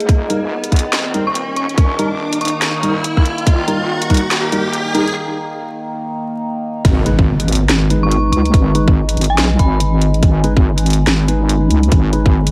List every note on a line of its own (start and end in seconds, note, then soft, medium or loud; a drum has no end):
0.00 6.81 D#4 medium
0.00 closed hi-hat soft
0.00 riser medium
0.09 0.92 D#1 medium
0.09 6.81 D#3 medium
0.09 6.81 A#3 medium
0.09 kick loud
0.09 closed hi-hat medium
0.30 0.39 G3 medium
0.30 0.39 D#4 medium
0.30 0.39 A#4 medium
0.30 closed hi-hat soft
0.64 closed hi-hat medium
0.72 kick medium
0.72 closed hi-hat soft
0.76 closed hi-hat medium
0.79 closed hi-hat medium
0.93 1.55 D#1 medium
0.93 snare loud
0.93 closed hi-hat medium
1.14 1.23 G3 medium
1.14 1.23 D#4 medium
1.14 1.23 A#4 medium
1.14 closed hi-hat soft
1.27 1.55 C#6 medium
1.35 closed hi-hat medium
1.56 1.76 G1 medium
1.56 1.90 C#6 medium
1.56 closed hi-hat soft
1.69 closed hi-hat soft
1.78 2.40 D#1 loud
1.78 kick loud
1.78 closed hi-hat medium
1.99 2.08 G3 medium
1.99 2.08 D#4 medium
1.99 2.08 A#4 medium
1.99 closed hi-hat soft
2.33 closed hi-hat medium
2.41 2.64 D#1 medium
2.41 2.75 C#6 medium
2.41 closed hi-hat soft
2.45 closed hi-hat medium
2.48 closed hi-hat medium
2.62 2.82 G1 loud
2.62 snare loud
2.62 closed hi-hat medium
2.83 3.45 D#1 loud
2.83 2.92 G3 medium
2.83 2.92 D#4 medium
2.83 2.92 A#4 loud
2.83 closed hi-hat soft
3.04 closed hi-hat medium
3.17 kick medium
3.25 closed hi-hat medium
3.38 closed hi-hat soft
3.47 4.30 D#1 loud
3.47 kick loud
3.47 closed hi-hat medium
3.68 3.77 G3 medium
3.68 3.77 D#4 medium
3.68 3.77 A#4 loud
3.68 closed hi-hat soft
4.02 closed hi-hat medium
4.10 4.19 G3 medium
4.10 4.19 D#4 medium
4.10 4.19 A#4 loud
4.10 kick medium
4.10 closed hi-hat soft
4.14 closed hi-hat medium
4.17 closed hi-hat medium
4.31 4.93 D#1 medium
4.31 snare loud
4.31 closed hi-hat medium
4.52 4.61 G3 medium
4.52 4.61 D#4 medium
4.52 4.61 A#4 loud
4.52 closed hi-hat medium
4.73 closed hi-hat medium
4.94 5.14 G1 medium
4.94 5.04 G3 medium
4.94 5.04 D#4 medium
4.94 5.04 A#4 loud
4.94 closed hi-hat medium
5.07 closed hi-hat soft
6.85 7.68 G#1 loud
6.85 12.51 G#3 medium
6.85 10.19 D#4 medium
6.85 12.51 B4 medium
6.85 kick loud
6.85 closed hi-hat medium
6.85 impact medium
7.06 7.15 G#3 medium
7.06 7.15 D#4 medium
7.06 7.15 B4 loud
7.06 closed hi-hat medium
7.19 kick loud
7.40 closed hi-hat medium
7.48 closed hi-hat medium
7.52 closed hi-hat medium
7.55 closed hi-hat medium
7.69 8.32 G#1 medium
7.69 snare loud
7.69 closed hi-hat medium
7.90 8.73 G#3 medium
7.90 8.73 D#4 medium
7.90 8.73 B4 medium
7.90 closed hi-hat medium
8.03 8.31 C#6 medium
8.11 closed hi-hat medium
8.32 8.52 C#2 medium
8.32 8.66 C#6 medium
8.32 closed hi-hat medium
8.45 closed hi-hat soft
8.54 9.16 G#1 loud
8.54 kick loud
8.54 closed hi-hat medium
8.75 8.89 G#3 medium
8.75 8.89 D#4 medium
8.75 8.89 B4 medium
8.75 closed hi-hat medium
8.88 kick loud
9.09 closed hi-hat medium
9.17 9.40 G#1 medium
9.17 closed hi-hat medium
9.21 closed hi-hat medium
9.24 closed hi-hat medium
9.30 9.58 G#5 medium
9.38 9.58 B1 loud
9.38 snare loud
9.38 closed hi-hat medium
9.59 10.22 G#1 loud
9.59 9.93 B5 medium
9.59 kick medium
9.59 closed hi-hat medium
9.80 closed hi-hat medium
10.02 closed hi-hat medium
10.14 closed hi-hat soft
10.23 11.06 G#1 loud
10.23 12.51 C#4 medium
10.23 kick loud
10.23 closed hi-hat medium
10.44 10.53 G#3 medium
10.44 10.53 D#4 medium
10.44 10.53 B4 loud
10.44 closed hi-hat medium
10.57 kick loud
10.78 closed hi-hat medium
10.86 closed hi-hat medium
10.90 closed hi-hat medium
10.93 closed hi-hat medium
11.07 11.69 G#1 medium
11.07 snare loud
11.07 closed hi-hat medium
11.28 12.11 G#3 medium
11.28 12.11 D#4 medium
11.28 12.11 B4 medium
11.28 closed hi-hat medium
11.49 closed hi-hat medium
11.70 11.90 C#2 medium
11.70 closed hi-hat medium
11.83 closed hi-hat soft
11.92 12.51 G#1 loud
11.92 kick loud
11.92 closed hi-hat medium
12.13 12.27 G#3 medium
12.13 12.27 D#4 medium
12.13 12.27 B4 medium
12.13 closed hi-hat medium
12.26 kick loud
12.47 closed hi-hat medium